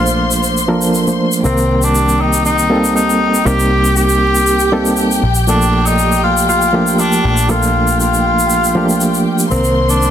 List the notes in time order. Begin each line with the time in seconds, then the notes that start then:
Already playing: A#1 F3 A3 A#3 D4 F4 A4 C5 C6
0.07 shaker
0.31 shaker
0.43 shaker
0.57 shaker
0.68 F3 A#3 D4 A4 A#4
0.82 shaker
0.94 shaker
1.07 F3 A3 A#3 D4 C5, shaker
1.32 shaker
1.43 C2 D#3 G3 A#3 C4 G4 A#4 G5, shaker
1.58 shaker
1.83 D4, shaker
1.95 shaker
2.09 shaker
2.21 D#4
2.33 shaker
2.46 D#4, shaker
2.59 shaker
2.70 G3 A#3 C4 D#4 A4
2.85 shaker
2.96 D#4, shaker
3.10 shaker
3.35 shaker
3.45 C2 G3 A#3 C4 D#4 G4 A#4, shaker
3.60 shaker
3.85 shaker
3.96 G4, shaker
4.09 shaker
4.35 shaker
4.47 shaker
4.59 shaker
4.72 G3 A#3 C4 D#4 A4
4.86 shaker
4.97 shaker
5.12 shaker
5.23 A#1
5.35 shaker
5.47 F3 A3 A#3 D4 A4 D5, shaker
5.62 shaker
5.86 D#4, shaker
5.99 shaker
6.12 shaker
6.23 F4
6.38 shaker
6.49 F4, shaker
6.62 shaker
6.73 F3 A3 A#3 D4 G4
6.88 shaker
6.99 D4, shaker
7.13 shaker
7.25 A#1
7.38 shaker
7.49 F3 A3 A#3 D4 F4 A4, shaker
7.63 shaker
7.88 shaker
8.01 F4, shaker
8.14 shaker
8.39 shaker
8.50 shaker
8.64 shaker
8.75 F3 A3 A#3 D4 G4
8.90 shaker
9.01 shaker
9.14 shaker
9.39 shaker
9.50 C2 D#3 G3 A#3 C4 A#4 C5 C6, shaker
9.64 shaker
9.89 D4, shaker
10.02 shaker